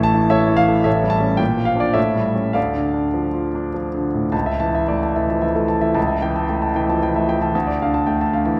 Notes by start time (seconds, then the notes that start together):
Already playing: A1 A2 E3 A3 E4 E5 A5 C#6
0.03 A5
0.14 E4
0.30 A3 A4 C#5 E5
0.49 E3
0.57 F5
0.68 A3
0.84 A1 A2 A4 C#5 E5
1.03 G3
1.10 A5
1.20 G3 C#4
1.37 A#2 G5
1.57 F3
1.65 F5
1.75 F3 D4
1.80 D5
1.94 A2 A4 C#5 E5
2.16 G3
2.35 G3 C#4
2.53 D2 A4 D5 F5
2.74 D3
2.94 D4
3.14 F3
3.34 F4
3.55 D4
3.74 F3
3.94 D3
4.15 A2
4.32 C#2 A5
4.46 E5
4.60 E3 A5
4.75 E5
4.88 A3 D5
5.03 A5
5.16 E3 E5
5.30 F3 A5
5.42 E3 E5
5.55 A3 A4
5.68 A5
5.81 E3 E5
5.94 C#2 A5
6.07 E5
6.22 E3 G5
6.36 A5
6.49 A3 G5
6.62 A5
6.75 E3 G5
6.89 F3 A5
7.03 E3 G5
7.16 A3 E5
7.29 G5
7.41 E3 A5
7.55 D2 A5
7.67 D5
7.82 D3 F5
7.94 A5
8.07 A3 G5
8.21 A5
8.33 D3 F5
8.45 E3 A5